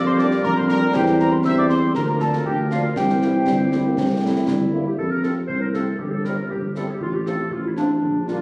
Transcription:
0.00 0.35 F2 medium
0.00 1.95 G3 medium
0.00 0.90 A#3 medium
0.00 0.89 G4 medium
0.00 0.93 A#4 medium
0.06 0.18 C5 medium
0.06 0.12 C6 medium
0.18 0.29 G3 medium
0.18 0.28 A#3 medium
0.18 0.29 D4 medium
0.18 0.44 D5 loud
0.18 0.46 D6 medium
0.18 snare medium
0.31 snare medium
0.43 0.86 F2 medium
0.43 0.55 A#4 loud
0.43 0.59 A#5 medium
0.43 concert bass drum medium
0.56 0.62 C5 medium
0.56 0.70 C6 medium
0.68 0.79 G3 medium
0.68 0.79 A#3 medium
0.68 0.79 D4 medium
0.68 0.92 A#4 loud
0.68 0.96 A#5 medium
0.68 snare medium
0.93 1.36 E2 medium
0.93 1.96 C4 medium
0.93 1.41 G4 medium
0.93 1.06 G4 medium
0.93 1.41 C5 medium
0.93 1.20 G5 medium
0.93 concert bass drum medium
0.93 snare medium
0.93 crash soft
1.06 snare medium
1.19 1.29 G3 medium
1.19 1.29 C4 medium
1.19 1.32 A#4 medium
1.19 1.34 A#5 medium
1.19 snare soft
1.32 1.45 C5 medium
1.32 1.44 C6 medium
1.44 1.87 E2 medium
1.44 1.92 G4 medium
1.44 1.93 C5 medium
1.44 1.57 E5 loud
1.44 1.57 E6 medium
1.44 concert bass drum medium
1.44 snare medium
1.58 1.69 D5 medium
1.58 1.68 D6 medium
1.69 1.79 G3 medium
1.69 1.79 C4 medium
1.69 1.81 C5 medium
1.69 1.93 C6 medium
1.69 snare medium
1.94 2.38 D2 medium
1.94 2.93 F3 medium
1.94 2.93 A#3 medium
1.94 2.92 F4 medium
1.94 2.96 A#4 medium
1.94 2.01 A#4 medium
1.94 2.01 A#5 medium
1.94 concert bass drum medium
1.94 snare medium
2.08 2.14 A#4 medium
2.08 2.22 A#5 medium
2.20 2.30 F3 medium
2.20 2.30 A#3 medium
2.20 2.30 D4 medium
2.20 2.44 A4 medium
2.20 2.48 A5 medium
2.20 snare medium
2.33 snare medium
2.45 2.88 D2 medium
2.45 2.57 G4 medium
2.45 2.70 G5 medium
2.45 concert bass drum medium
2.71 2.81 F3 medium
2.71 2.81 A#3 medium
2.71 2.81 D4 medium
2.71 2.95 F4 medium
2.71 2.94 F5 medium
2.71 snare medium
2.95 3.39 C2 medium
2.95 4.74 E3 medium
2.95 4.74 C4 medium
2.95 4.05 E4 medium
2.95 4.44 G4 medium
2.95 4.05 C5 medium
2.95 4.44 G5 medium
2.95 concert bass drum medium
2.95 snare medium
3.10 snare soft
3.22 3.31 G3 medium
3.22 3.31 C4 soft
3.22 3.31 E4 medium
3.22 snare soft
3.47 3.89 G1 medium
3.47 3.58 G3 medium
3.47 concert bass drum medium
3.47 snare medium
3.72 3.81 G3 medium
3.72 3.78 A3 medium
3.72 3.81 C4 soft
3.72 3.82 E4 soft
3.72 snare medium
3.85 3.91 A#3 medium
3.97 4.40 C2 medium
3.97 4.09 C4 medium
3.97 concert bass drum medium
3.97 snare medium
4.10 4.16 A#3 medium
4.22 4.31 G3 medium
4.22 4.46 A3 medium
4.22 4.31 C4 soft
4.22 4.81 E4 medium
4.22 4.32 E4 soft
4.47 4.86 G1 medium
4.47 4.59 G3 medium
4.47 concert bass drum medium
4.47 snare medium
4.61 4.67 G3 medium
4.73 4.83 G3 medium
4.73 4.97 A#3 medium
4.73 4.83 C4 medium
4.73 4.82 E4 soft
4.85 4.98 G4 medium
4.98 5.41 F2 medium
4.98 5.10 A4 medium
4.98 concert bass drum medium
5.10 5.23 A#4 medium
5.23 5.33 C3 soft
5.23 5.33 A3 soft
5.23 5.33 C4 soft
5.23 5.33 F4 soft
5.23 5.34 A4 medium
5.23 snare soft
5.48 5.91 C2 soft
5.48 5.60 C5 medium
5.48 concert bass drum medium
5.61 5.67 A#4 medium
5.74 5.83 C3 soft
5.74 5.84 A3 soft
5.74 5.84 C4 soft
5.74 5.83 F4 soft
5.74 5.98 A4 medium
5.74 snare soft
5.98 6.42 G1 medium
5.98 6.12 G4 medium
5.98 concert bass drum medium
6.12 6.25 A4 medium
6.24 6.35 C3 soft
6.24 6.34 G3 soft
6.24 6.34 C4 soft
6.24 6.34 E4 soft
6.24 6.50 A#4 medium
6.24 snare soft
6.50 6.93 G1 medium
6.50 6.61 G4 medium
6.50 concert bass drum medium
6.75 6.85 C3 soft
6.75 6.85 G3 soft
6.75 6.85 C4 soft
6.75 6.84 E4 soft
6.75 6.88 A4 medium
6.75 snare soft
6.90 7.02 G4 medium
7.00 7.43 A1 medium
7.00 7.13 F4 medium
7.00 concert bass drum medium
7.15 7.27 G4 medium
7.26 7.36 C3 soft
7.26 7.36 F3 soft
7.26 7.36 C4 soft
7.26 7.36 F4 soft
7.26 7.50 A4 medium
7.26 snare soft
7.51 7.94 A1 medium
7.51 7.65 F4 medium
7.51 concert bass drum medium
7.66 7.71 E4 medium
7.77 7.87 C3 soft
7.77 7.87 F3 soft
7.77 7.87 C4 soft
7.77 8.24 D4 medium
7.77 7.87 F4 soft
7.77 snare soft
8.02 8.42 A#1 medium
8.02 concert bass drum medium
8.28 8.37 D3 soft
8.28 8.37 G3 soft
8.28 8.37 A#3 soft
8.28 8.38 D4 soft
8.28 8.42 F4 medium
8.28 snare soft

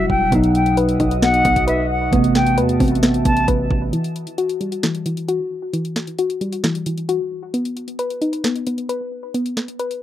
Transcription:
0.00 0.32 E3 medium
0.00 0.28 F#3 medium
0.00 0.29 G3 medium
0.00 0.32 G3 medium
0.00 0.30 E4 medium
0.00 0.32 F#4 loud
0.00 0.29 E5 medium
0.00 2.09 F#5 medium
0.00 0.28 E6 medium
0.09 0.31 E1 loud
0.09 0.31 G5 medium
0.09 kick loud
0.30 0.97 B1 loud
0.30 2.08 B2 medium
0.30 2.09 F#3 medium
0.30 1.21 B3 medium
0.30 3.89 F#4 medium
0.30 2.11 D#5 medium
0.30 2.11 D#6 medium
0.30 kick loud
0.30 closed hi-hat medium
0.35 2.10 D#4 medium
0.44 closed hi-hat medium
0.55 0.76 G5 medium
0.55 closed hi-hat medium
0.66 closed hi-hat medium
0.77 1.66 B4 loud
0.77 closed hi-hat medium
0.89 closed hi-hat medium
1.00 1.43 B1 loud
1.00 2.13 D#4 medium
1.00 kick loud
1.00 closed hi-hat medium
1.11 closed hi-hat medium
1.22 1.44 B3 medium
1.22 1.65 F#5 loud
1.22 snare loud
1.22 closed hi-hat medium
1.34 closed hi-hat medium
1.45 2.10 B1 loud
1.45 2.11 B3 medium
1.45 kick loud
1.45 closed hi-hat medium
1.56 kick loud
1.56 closed hi-hat medium
1.67 2.13 B4 loud
1.67 1.89 E5 medium
1.67 closed hi-hat medium
1.90 2.12 F#5 medium
2.11 2.59 A1 loud
2.11 3.89 C3 medium
2.11 3.90 A3 medium
2.11 3.02 B3 loud
2.11 3.91 E5 medium
2.11 3.91 A5 medium
2.11 kick loud
2.11 closed hi-hat medium
2.16 3.91 B3 medium
2.24 closed hi-hat medium
2.35 2.57 G5 medium
2.35 snare loud
2.35 closed hi-hat medium
2.47 closed hi-hat medium
2.58 2.79 E2 loud
2.58 3.47 B4 medium
2.58 closed hi-hat medium
2.69 closed hi-hat medium
2.80 3.24 A1 loud
2.80 3.93 C4 medium
2.80 kick medium
2.80 closed hi-hat medium
2.80 open hi-hat medium
2.88 closed hi-hat medium
2.95 closed hi-hat medium
3.03 3.24 B3 medium
3.03 snare loud
3.03 closed hi-hat medium
3.14 closed hi-hat medium
3.25 3.47 A1 loud
3.25 3.93 B3 medium
3.25 3.47 A5 medium
3.25 kick loud
3.25 closed hi-hat medium
3.37 closed hi-hat medium
3.48 3.70 A1 loud
3.48 3.93 B4 loud
3.48 kick loud
3.48 closed hi-hat medium
3.71 3.92 A1 loud
3.71 kick loud
3.93 4.82 E3 loud
3.93 closed hi-hat medium
4.04 closed hi-hat medium
4.16 closed hi-hat medium
4.27 closed hi-hat medium
4.38 5.27 F#4 medium
4.38 closed hi-hat medium
4.49 closed hi-hat medium
4.61 5.96 G3 medium
4.61 closed hi-hat medium
4.72 closed hi-hat medium
4.83 5.05 E3 medium
4.83 snare loud
4.83 closed hi-hat medium
4.95 closed hi-hat medium
5.06 5.72 E3 medium
5.06 closed hi-hat medium
5.17 closed hi-hat medium
5.28 6.17 F#4 medium
5.28 closed hi-hat medium
5.73 6.63 E3 loud
5.73 closed hi-hat medium
5.85 closed hi-hat medium
5.96 snare medium
5.96 closed hi-hat medium
6.07 closed hi-hat medium
6.19 7.08 F#4 medium
6.19 closed hi-hat medium
6.30 closed hi-hat medium
6.41 7.54 G3 medium
6.41 closed hi-hat medium
6.53 closed hi-hat medium
6.64 6.85 E3 medium
6.64 snare loud
6.64 closed hi-hat medium
6.75 closed hi-hat medium
6.86 7.54 E3 medium
6.86 closed hi-hat medium
6.98 closed hi-hat medium
7.09 7.54 F#4 medium
7.09 closed hi-hat medium
7.54 8.43 B3 medium
7.54 closed hi-hat medium
7.65 closed hi-hat medium
7.77 closed hi-hat medium
7.88 closed hi-hat medium
7.99 8.88 B4 loud
7.99 closed hi-hat medium
8.10 closed hi-hat medium
8.21 9.34 D#4 medium
8.21 closed hi-hat medium
8.33 closed hi-hat medium
8.44 8.66 B3 medium
8.44 snare loud
8.44 closed hi-hat medium
8.56 closed hi-hat medium
8.67 9.33 B3 medium
8.67 closed hi-hat medium
8.78 closed hi-hat medium
8.89 9.34 B4 medium
8.89 closed hi-hat medium
9.34 10.03 B3 loud
9.34 closed hi-hat medium
9.46 closed hi-hat medium
9.57 snare medium
9.57 closed hi-hat medium
9.68 closed hi-hat medium
9.79 10.03 B4 loud
9.79 closed hi-hat medium
9.91 closed hi-hat medium

